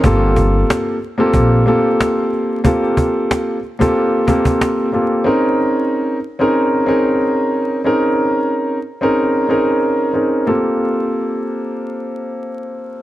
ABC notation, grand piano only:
X:1
M:4/4
L:1/16
Q:"Swing 16ths" 1/4=92
K:Gm
V:1 name="Grand piano"
[B,CFGA]6 z [B,CFGA]3 [B,CFGA]6 | [B,CFGA]6 z [B,CFGA]3 [B,CFGA]4 [B,CFGA]2 | [C_DE_AB]6 z [CDEAB]3 [CDEAB]6 | [C_DE_AB]6 z [CDEAB]3 [CDEAB]4 [CDEAB]2 |
[B,CFGA]16 |]